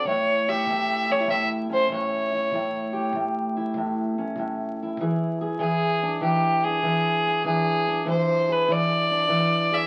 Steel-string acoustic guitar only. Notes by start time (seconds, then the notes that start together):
0.07 A2 E4
0.49 G4
0.69 A2
1.10 C#4
1.20 E4
1.28 A2
1.69 C#4
1.91 A2
2.33 E4
2.54 A2 E4
2.93 G4
3.15 A2
3.57 E4
3.77 A2
4.18 C#4
4.38 A2
4.83 E4
5.00 E3 G#4
5.41 G#4
5.60 E3
6.03 D4
6.21 E3
6.64 D4
6.83 E3
7.27 D4
7.45 E3 D4
7.87 D4
8.05 E3
8.48 G#4
8.68 E3
9.11 D4
9.29 E3
9.71 G#4